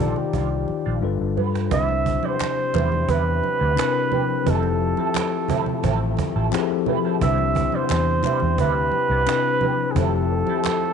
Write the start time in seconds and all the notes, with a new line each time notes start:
Already playing: A#1 D#3 C5
0.00 G3 D4 D#4 F4 G4 A4 D5, cajon bass
0.16 G4, muted clean electric guitar stroke, cajon slap, low conga
0.33 C2 G3 D4 F4, cajon bass, muted conga
0.51 cajon slap
0.68 muted clean electric guitar stroke, muted fingered electric bass stroke, cajon slap, muted conga, high conga
0.85 A#1 G3 D4 F4, cajon slap
1.01 G1 G3 D4 F4 A4 B4, muted clean electric guitar stroke, cajon slap
1.20 G1, cajon slap
1.37 G2 B3 F4 B4, cajon slap, muted conga, high conga
1.54 muted clean electric guitar stroke, cajon slap
1.69 C2 C3 G3 B3 C4 D4 E4 G4, cajon bass
1.73 A#4 E5
1.80 C5
1.88 muted clean electric guitar stroke, high conga
2.06 muted clean electric guitar stroke, cajon bass, muted conga
2.23 G3 B3 E4 C5, cajon slap, high conga
2.40 muted clean electric guitar stroke, cajon slap, clap, high conga
2.57 muted clean electric guitar stroke
2.73 E2 G3 B3 E4, cajon slap, clap, muted conga, high conga, low conga
2.92 muted clean electric guitar stroke, cajon slap, low conga
3.08 E2 G3 B3 E4 B4, cajon bass
3.43 muted clean electric guitar stroke, cajon slap, muted conga, high conga
3.60 D2 G3 B3 E4, cajon slap
3.75 C3 C4 D4 E4 A#4, muted clean electric guitar stroke, cajon slap, clap
3.85 B4
4.12 G3 B3 G4, muted conga, high conga, low conga
4.29 muted clean electric guitar stroke, cajon slap
4.44 F1 F3 A3 C4 E4 G4 A4, cajon bass
4.50 A4
4.63 muted clean electric guitar stroke, high conga
4.81 muted clean electric guitar stroke, cajon slap
4.97 C4 E4 A4, cajon slap, high conga
5.15 muted clean electric guitar stroke, cajon slap, clap, high conga
5.33 muted clean electric guitar stroke
5.48 C4 E4 A4, cajon bass, high conga, low conga
5.66 muted clean electric guitar stroke, cajon slap, low conga
5.83 A1 C4 E4 A4, cajon bass, muted conga
6.02 cajon slap
6.17 muted clean electric guitar stroke, cajon bass, muted conga, high conga
6.36 A1 C4 E4 A4, cajon slap
6.51 F3 C4 E4 G4 G#4, muted clean electric guitar stroke, cajon slap, clap
6.61 A4
6.71 muted clean electric guitar stroke
6.86 C4 E4 B4, muted conga, high conga, low conga
7.05 C4 E4 A4, cajon slap
7.19 C2 C3 G3 B3 C4 D4 E4 C5 E5, cajon bass
7.38 muted clean electric guitar stroke, high conga
7.55 muted clean electric guitar stroke, cajon bass, muted conga
7.72 G3 B3 E4 C5, cajon slap, high conga
7.89 E2, muted clean electric guitar stroke, cajon slap, clap, high conga
8.09 muted clean electric guitar stroke
8.23 G3 B3 E4, cajon slap, clap, muted conga, high conga, low conga
8.40 E2, muted clean electric guitar stroke, cajon slap, low conga
8.58 D2 G3 B3 E4 B4, cajon bass
8.76 cajon slap
8.91 muted clean electric guitar stroke, cajon slap, muted conga, high conga
9.10 C2 G3 B3 E4, cajon slap
9.26 C3 C4 D4 E4 B4, muted clean electric guitar stroke, cajon slap, clap
9.61 G3 B3 G4, muted conga, high conga, low conga
9.80 muted clean electric guitar stroke, cajon slap
9.91 F3 G#4
9.95 F1 A3 C4 E4 G4 A4, cajon bass
10.13 muted clean electric guitar stroke, cajon slap
10.30 muted clean electric guitar stroke, cajon slap
10.47 C4 E4 A4, cajon slap, high conga
10.65 muted clean electric guitar stroke, cajon slap, clap, high conga
10.83 muted clean electric guitar stroke, cajon slap